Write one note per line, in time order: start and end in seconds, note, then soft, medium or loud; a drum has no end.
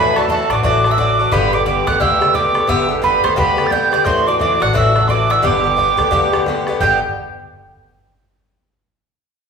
0.00 0.43 D2 loud
0.00 0.16 A2 medium
0.00 0.16 E3 loud
0.00 0.17 D4 medium
0.00 0.15 F#4 loud
0.00 0.15 B4 medium
0.00 0.18 B5 loud
0.05 bodhran soft
0.16 0.29 E3 soft
0.16 0.30 D4 medium
0.16 0.29 F#4 medium
0.16 0.28 A4 medium
0.16 0.29 A5 loud
0.16 bodhran medium
0.28 0.50 A2 medium
0.28 0.51 E3 medium
0.28 0.51 D4 medium
0.28 0.50 F#4 medium
0.28 0.49 A4 medium
0.28 0.53 A5 medium
0.28 bodhran medium
0.50 0.61 A1 loud
0.50 0.63 E3 soft
0.50 0.63 D4 medium
0.50 0.64 F#4 medium
0.50 0.62 D5 loud
0.50 0.63 D6 medium
0.50 bodhran medium
0.63 1.24 A1 medium
0.63 0.84 A2 medium
0.63 0.85 E3 medium
0.63 0.85 D4 medium
0.63 0.84 F#4 medium
0.63 0.90 D5 medium
0.63 0.92 D6 loud
0.63 bodhran medium
0.84 0.97 E3 soft
0.84 0.99 D4 medium
0.84 0.98 F#4 medium
0.84 bodhran medium
0.91 0.97 E5 medium
0.91 1.00 E6 medium
0.98 1.19 A2 medium
0.98 1.19 E3 medium
0.98 1.20 D4 medium
0.98 1.18 F#4 medium
0.98 1.30 D5 medium
0.98 1.34 D6 loud
0.98 bodhran medium
1.08 bodhran soft
1.19 1.32 E3 soft
1.19 1.32 D4 medium
1.19 1.32 F#4 medium
1.31 1.81 G1 loud
1.31 1.53 G2 medium
1.31 1.53 D3 medium
1.31 1.53 B3 medium
1.31 1.52 G4 loud
1.31 1.52 B4 medium
1.31 1.56 B5 loud
1.31 bodhran medium
1.43 bodhran soft
1.53 1.65 D3 soft
1.53 1.66 B3 soft
1.53 1.66 G4 medium
1.53 1.65 D5 medium
1.53 1.66 D6 loud
1.66 1.87 G2 medium
1.66 1.88 D3 medium
1.66 1.87 B3 medium
1.66 1.85 G4 medium
1.66 1.86 D5 medium
1.66 1.89 D6 loud
1.66 bodhran medium
1.87 1.99 D2 loud
1.87 1.99 D3 soft
1.87 2.00 B3 medium
1.87 2.00 G4 medium
1.87 1.99 F#5 loud
1.87 2.02 F#6 medium
1.87 bodhran medium
2.00 2.61 D2 loud
2.00 2.21 G2 medium
2.00 2.22 D3 medium
2.00 2.21 B3 medium
2.00 2.20 G4 medium
2.00 2.36 E5 medium
2.00 2.37 E6 loud
2.00 bodhran medium
2.21 2.34 D3 soft
2.21 2.35 B3 soft
2.21 2.34 G4 medium
2.21 bodhran medium
2.34 2.56 G2 medium
2.34 2.56 D3 medium
2.34 2.55 B3 medium
2.34 2.53 G4 medium
2.34 2.67 D5 medium
2.34 2.70 D6 loud
2.34 bodhran medium
2.45 bodhran soft
2.54 2.67 D3 soft
2.54 2.68 B3 soft
2.54 2.68 G4 medium
2.54 bodhran medium
2.67 3.18 G1 loud
2.67 2.89 G2 medium
2.67 2.90 D3 medium
2.67 2.89 B3 loud
2.67 2.87 G4 loud
2.67 2.89 E5 medium
2.67 2.90 E6 loud
2.67 bodhran medium
2.79 bodhran soft
2.89 3.01 D3 soft
2.89 3.02 B3 soft
2.89 3.03 G4 medium
3.02 3.24 G2 medium
3.02 3.24 D3 medium
3.02 3.24 B3 medium
3.02 3.22 G4 medium
3.02 3.23 B4 medium
3.02 3.35 B5 medium
3.02 bodhran medium
3.23 3.36 D2 loud
3.23 3.36 D3 soft
3.23 3.37 B3 medium
3.23 3.37 G4 medium
3.23 3.37 C5 loud
3.23 bodhran medium
3.36 3.98 D2 loud
3.36 3.58 G2 medium
3.36 3.58 D3 medium
3.36 3.58 B3 medium
3.36 3.56 G4 medium
3.36 3.65 B4 medium
3.36 3.68 B5 loud
3.36 bodhran medium
3.57 3.71 D3 soft
3.57 3.71 B3 medium
3.57 3.71 G4 medium
3.57 bodhran medium
3.66 3.92 G2 medium
3.66 3.73 A6 medium
3.71 3.93 D3 medium
3.71 3.92 B3 medium
3.71 3.91 G4 medium
3.71 3.92 G5 medium
3.71 4.06 G6 loud
3.71 bodhran medium
3.82 bodhran soft
3.92 4.05 D3 soft
3.92 4.06 B3 medium
3.92 4.06 G4 medium
3.92 4.06 D5 medium
3.92 bodhran medium
4.05 4.55 D2 loud
4.05 4.27 A2 medium
4.05 4.27 E3 medium
4.05 4.27 D4 medium
4.05 4.25 F#4 medium
4.05 4.26 C5 medium
4.05 4.29 C6 loud
4.05 bodhran medium
4.17 bodhran soft
4.26 4.40 E3 soft
4.26 4.41 D4 medium
4.26 4.40 F#4 medium
4.26 4.40 D5 medium
4.26 4.40 D6 loud
4.39 4.61 A2 medium
4.39 4.62 E3 medium
4.39 4.61 D4 medium
4.39 4.59 F#4 medium
4.39 4.61 D5 medium
4.39 4.64 D6 medium
4.39 bodhran medium
4.60 4.73 A1 loud
4.60 4.73 E3 soft
4.60 4.74 D4 medium
4.60 4.74 F#4 medium
4.60 4.75 F#5 loud
4.60 4.75 F#6 medium
4.60 bodhran medium
4.73 5.35 A1 medium
4.73 4.95 A2 medium
4.73 4.96 E3 medium
4.73 4.95 D4 medium
4.73 4.94 F#4 medium
4.73 5.07 E5 medium
4.73 5.09 E6 loud
4.73 bodhran medium
4.95 5.08 E3 soft
4.95 5.09 D4 soft
4.95 5.09 F#4 medium
4.95 bodhran medium
5.08 5.30 A2 medium
5.08 5.30 E3 medium
5.08 5.30 D4 medium
5.08 5.28 F#4 medium
5.08 5.31 D5 medium
5.08 5.12 C6 medium
5.08 5.33 D6 medium
5.08 bodhran medium
5.20 bodhran soft
5.30 5.43 E3 soft
5.30 5.43 D4 soft
5.30 5.43 F#4 medium
5.30 5.44 E5 medium
5.30 5.44 E6 medium
5.30 bodhran medium
5.42 5.92 G1 loud
5.42 5.64 G2 medium
5.42 5.64 D3 medium
5.42 5.64 B3 medium
5.42 5.62 G4 loud
5.42 6.42 D5 medium
5.42 6.43 D6 loud
5.42 bodhran medium
5.55 bodhran soft
5.63 5.76 D3 soft
5.63 5.77 B3 soft
5.63 5.77 G4 soft
5.76 5.98 G2 medium
5.76 5.99 D3 medium
5.76 5.97 B3 medium
5.76 5.96 G4 medium
5.76 bodhran medium
5.97 6.10 D2 loud
5.97 6.11 D3 medium
5.97 6.11 B3 medium
5.97 6.11 G4 medium
5.97 bodhran medium
6.11 6.72 D2 medium
6.11 6.33 G2 medium
6.11 6.33 D3 medium
6.11 6.33 B3 medium
6.11 6.31 G4 medium
6.11 bodhran medium
6.33 6.46 D3 soft
6.33 6.47 B3 medium
6.33 6.46 G4 medium
6.33 bodhran medium
6.46 6.68 G2 medium
6.46 6.68 D3 medium
6.46 6.68 B3 medium
6.46 6.66 G4 medium
6.46 bodhran medium
6.57 bodhran soft
6.67 6.80 D3 soft
6.67 6.81 B3 medium
6.67 6.81 G4 medium
6.67 bodhran medium
6.80 7.00 G1 loud
6.80 6.97 G2 medium
6.80 6.98 D3 medium
6.80 6.98 B3 medium
6.80 6.99 G4 medium
6.80 7.00 G5 medium
6.80 7.00 G6 medium
6.80 bodhran medium